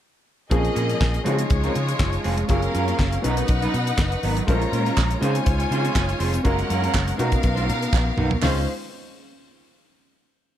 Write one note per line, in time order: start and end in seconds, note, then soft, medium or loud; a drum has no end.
0.50 0.68 A#1 loud
0.50 0.70 F3 medium
0.50 1.22 F3 medium
0.50 0.63 A#3 medium
0.50 1.26 A#3 medium
0.50 1.25 A#3 medium
0.50 1.26 C4 medium
0.50 0.63 C#4 medium
0.50 1.24 C#4 medium
0.50 0.62 G#4 medium
0.50 1.24 G#4 medium
0.50 1.26 G#4 medium
0.50 1.24 D#5 medium
0.50 kick loud
0.50 closed hi-hat medium
0.63 muted clean electric guitar stroke soft
0.63 closed hi-hat soft
0.75 0.93 A#2 medium
0.75 0.89 F3 medium
0.75 0.88 A#3 medium
0.75 0.88 C#4 medium
0.75 0.87 G#4 medium
0.75 closed hi-hat medium
0.88 0.99 F3 soft
0.88 0.99 A#3 medium
0.88 0.99 C#4 medium
0.88 1.00 G#4 medium
0.88 closed hi-hat soft
1.00 1.18 A#1 medium
1.00 muted clean electric guitar stroke soft
1.00 kick loud
1.00 snare medium
1.00 clap medium
1.13 muted clean electric guitar stroke soft
1.13 closed hi-hat soft
1.24 1.43 C#3 medium
1.24 2.46 F3 medium
1.24 1.44 G#3 medium
1.24 2.47 G#3 medium
1.24 1.38 C4 loud
1.24 2.47 C#4 medium
1.24 2.47 D#4 medium
1.24 1.38 F4 medium
1.24 2.48 F4 medium
1.24 1.33 F#4 medium
1.24 1.37 G#4 medium
1.24 2.47 C#5 medium
1.24 closed hi-hat medium
1.33 2.49 G#4 medium
1.38 muted clean electric guitar stroke medium
1.38 closed hi-hat medium
1.50 1.67 C#2 medium
1.50 muted clean electric guitar stroke soft
1.50 kick loud
1.50 closed hi-hat medium
1.64 1.74 G#3 medium
1.64 1.74 C4 medium
1.64 1.74 F4 medium
1.64 1.75 A#4 medium
1.64 closed hi-hat soft
1.75 1.92 C#3 loud
1.75 muted clean electric guitar stroke soft
1.75 closed hi-hat medium
1.88 muted clean electric guitar stroke soft
1.88 closed hi-hat medium
2.00 2.17 F#1 medium
2.00 kick loud
2.00 snare loud
2.00 clap loud
2.13 muted clean electric guitar stroke soft
2.13 closed hi-hat soft
2.24 2.42 F1 medium
2.24 2.43 G#3 medium
2.24 2.37 C4 medium
2.24 2.36 F4 medium
2.24 2.36 G#4 loud
2.24 open hi-hat medium
2.37 muted clean electric guitar stroke soft
2.37 closed hi-hat medium
2.48 2.66 F#1 medium
2.48 3.20 F#3 medium
2.48 2.68 A#3 medium
2.48 3.24 A#3 medium
2.48 2.61 C#4 medium
2.48 3.22 C#4 medium
2.48 3.23 C#4 medium
2.48 2.61 F4 medium
2.48 3.24 F4 medium
2.48 3.24 G#4 medium
2.48 2.61 A#4 loud
2.48 3.23 A#4 medium
2.48 3.23 F5 medium
2.48 kick loud
2.48 closed hi-hat medium
2.62 muted clean electric guitar stroke soft
2.62 closed hi-hat soft
2.74 2.91 F#2 medium
2.74 2.87 A#3 medium
2.74 2.87 C#4 medium
2.74 2.87 F4 medium
2.74 2.86 A#4 medium
2.74 closed hi-hat medium
2.87 2.97 A#3 soft
2.87 2.97 C#4 medium
2.87 2.98 F4 medium
2.87 2.98 A#4 medium
2.87 closed hi-hat soft
2.99 3.16 F#1 medium
2.99 muted clean electric guitar stroke soft
2.99 kick medium
2.99 snare medium
2.99 clap medium
3.12 muted clean electric guitar stroke soft
3.12 closed hi-hat soft
3.22 3.41 B1 loud
3.22 4.44 F#3 medium
3.22 3.43 F#3 medium
3.22 4.44 B3 medium
3.22 3.36 B3 medium
3.22 4.45 C#4 medium
3.22 4.45 D#4 medium
3.22 3.36 D#4 medium
3.22 4.46 D#4 medium
3.22 4.46 A#4 medium
3.22 3.36 A#4 loud
3.22 4.46 B4 medium
3.22 4.46 F#5 medium
3.22 closed hi-hat medium
3.37 muted clean electric guitar stroke soft
3.37 closed hi-hat medium
3.48 3.66 B1 medium
3.48 muted clean electric guitar stroke soft
3.48 kick loud
3.48 closed hi-hat medium
3.62 3.72 F#3 medium
3.62 3.72 B3 medium
3.62 3.73 D#4 medium
3.62 3.74 B4 medium
3.62 closed hi-hat soft
3.73 3.91 B2 loud
3.73 muted clean electric guitar stroke soft
3.73 closed hi-hat medium
3.87 muted clean electric guitar stroke soft
3.87 closed hi-hat medium
3.98 4.15 F#1 medium
3.98 kick loud
3.98 snare loud
3.98 clap loud
4.12 muted clean electric guitar stroke soft
4.12 closed hi-hat soft
4.23 4.40 G#1 medium
4.23 4.42 F#3 medium
4.23 4.36 B3 medium
4.23 4.36 D#4 medium
4.23 4.35 A#4 medium
4.23 open hi-hat medium
4.37 muted clean electric guitar stroke soft
4.37 closed hi-hat medium
4.47 4.64 A#1 loud
4.47 5.19 G#3 medium
4.47 4.68 G#3 medium
4.47 5.20 C#4 medium
4.47 4.61 C#4 medium
4.47 5.22 F4 medium
4.47 5.21 F4 medium
4.47 4.60 F4 medium
4.47 5.22 A#4 medium
4.47 4.61 A#4 medium
4.47 5.22 C5 medium
4.47 5.21 C#5 medium
4.47 5.21 A#5 medium
4.47 kick loud
4.47 closed hi-hat medium
4.62 muted clean electric guitar stroke soft
4.62 closed hi-hat soft
4.72 4.89 A#2 medium
4.72 4.86 G#3 medium
4.72 4.86 C#4 medium
4.72 4.85 F4 medium
4.72 4.85 A#4 medium
4.72 closed hi-hat medium
4.86 4.96 G#3 soft
4.86 4.97 C#4 medium
4.86 4.97 F4 medium
4.86 4.97 A#4 medium
4.86 closed hi-hat soft
4.97 5.14 A#1 loud
4.97 muted clean electric guitar stroke soft
4.97 kick medium
4.97 snare medium
4.97 clap loud
4.97 clap medium
5.11 muted clean electric guitar stroke soft
5.11 closed hi-hat soft
5.21 5.38 C#3 loud
5.21 6.42 G#3 medium
5.21 5.41 C4 medium
5.21 6.43 C#4 medium
5.21 6.43 D#4 medium
5.21 5.35 F4 medium
5.21 6.43 F4 medium
5.21 5.34 G#4 loud
5.21 5.34 C5 loud
5.21 6.44 C5 medium
5.21 6.43 C#5 medium
5.21 6.43 G#5 medium
5.21 closed hi-hat medium
5.35 muted clean electric guitar stroke soft
5.35 closed hi-hat medium
5.46 5.63 C#2 loud
5.46 muted clean electric guitar stroke soft
5.46 kick loud
5.46 closed hi-hat medium
5.59 muted clean electric guitar stroke medium
5.59 closed hi-hat soft
5.71 5.88 C#3 loud
5.71 5.84 C4 medium
5.71 5.83 F4 medium
5.71 5.82 G#4 medium
5.71 5.83 C5 medium
5.71 closed hi-hat medium
5.84 5.99 C4 medium
5.84 5.98 F4 medium
5.84 5.98 G#4 medium
5.84 5.98 C5 medium
5.84 closed hi-hat soft
5.95 6.12 F#1 loud
5.95 kick loud
5.95 snare loud
5.95 clap medium
5.95 clap loud
6.07 muted clean electric guitar stroke soft
6.07 closed hi-hat soft
6.19 6.37 F1 loud
6.19 6.39 C4 medium
6.19 6.32 F4 medium
6.19 6.32 G#4 medium
6.19 6.31 C5 medium
6.19 open hi-hat medium
6.33 muted clean electric guitar stroke soft
6.33 closed hi-hat medium
6.43 6.62 F#1 medium
6.43 7.19 G#3 medium
6.43 6.63 A#3 medium
6.43 6.57 C#4 medium
6.43 7.17 C#4 medium
6.43 7.18 C#4 medium
6.43 6.57 F4 loud
6.43 7.18 F#4 medium
6.43 6.56 A#4 loud
6.43 7.19 A#4 medium
6.43 7.18 A#4 medium
6.43 7.18 F#5 medium
6.43 kick loud
6.43 closed hi-hat medium
6.57 muted clean electric guitar stroke soft
6.57 closed hi-hat soft
6.68 6.87 F#2 medium
6.68 6.82 A#3 medium
6.68 6.82 C#4 medium
6.68 6.81 F4 medium
6.68 6.80 A#4 medium
6.68 closed hi-hat medium
6.82 6.93 A#3 soft
6.82 6.93 C#4 medium
6.82 6.94 F4 medium
6.82 6.94 A#4 medium
6.82 closed hi-hat soft
6.94 7.11 F#1 loud
6.94 muted clean electric guitar stroke soft
6.94 kick medium
6.94 snare medium
6.94 clap loud
6.94 clap medium
7.07 muted clean electric guitar stroke soft
7.07 closed hi-hat medium
7.17 7.36 B2 loud
7.17 7.38 A#3 medium
7.17 8.39 B3 medium
7.17 8.40 B3 medium
7.17 8.39 C#4 medium
7.17 7.31 D#4 medium
7.17 8.40 D#4 medium
7.17 7.30 F#4 loud
7.17 8.40 F#4 medium
7.17 8.40 A#4 medium
7.17 7.30 A#4 loud
7.17 8.40 A#4 medium
7.17 8.40 F5 loud
7.17 closed hi-hat medium
7.31 muted clean electric guitar stroke soft
7.31 kick medium
7.31 closed hi-hat medium
7.43 7.70 B1 loud
7.43 muted clean electric guitar stroke soft
7.43 kick loud
7.43 closed hi-hat medium
7.55 7.66 A#3 medium
7.55 7.66 D#4 medium
7.55 7.67 F#4 medium
7.55 7.67 C#5 medium
7.55 closed hi-hat soft
7.67 7.85 B2 loud
7.67 muted clean electric guitar stroke soft
7.67 closed hi-hat medium
7.81 muted clean electric guitar stroke soft
7.81 closed hi-hat medium
7.93 8.10 A#1 loud
7.93 kick loud
7.93 snare medium
7.93 clap loud
8.06 muted clean electric guitar stroke medium
8.17 8.34 B1 medium
8.17 8.37 A#3 medium
8.17 8.30 D#4 medium
8.17 8.30 F#4 medium
8.17 8.29 A#4 loud
8.17 mid tom medium
8.31 muted clean electric guitar stroke soft
8.31 floor tom medium
8.42 8.65 C#2 medium
8.42 8.65 G#3 medium
8.42 8.57 C4 medium
8.42 8.65 C#4 medium
8.42 8.65 D#4 medium
8.42 8.65 F4 medium
8.42 8.58 F4 medium
8.42 8.58 G#4 medium
8.42 8.65 C5 loud
8.42 8.65 C5 medium
8.42 8.58 C5 medium
8.42 8.65 F5 medium
8.42 snare medium
8.42 clap medium
8.42 floor tom loud
8.42 open hi-hat medium